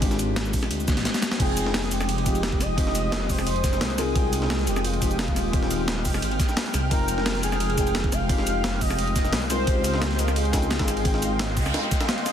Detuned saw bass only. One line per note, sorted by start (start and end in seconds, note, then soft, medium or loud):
0.00 0.55 G#1 loud
0.54 0.69 A#1 loud
0.71 0.99 D2 medium
0.97 1.05 G#1 loud
1.40 1.90 F1 medium
1.92 3.28 F1 loud
3.29 3.63 F1 loud
3.64 3.83 F1 loud
3.81 4.69 C2 loud
4.67 5.01 F1 loud
5.02 5.35 F1 loud
5.36 6.07 D#1 medium
6.05 6.21 F1 loud
6.22 6.38 G#1 medium
6.74 6.90 C2 medium
6.91 7.42 F1 loud
7.43 8.80 F1 loud
8.81 9.14 F1 loud
9.16 9.35 F1 loud
9.33 9.66 C2 loud
9.68 10.18 C#2 medium
10.19 10.52 C#2 loud
10.54 10.87 C#2 loud
10.88 11.59 G#1 loud
11.57 11.73 C#2 loud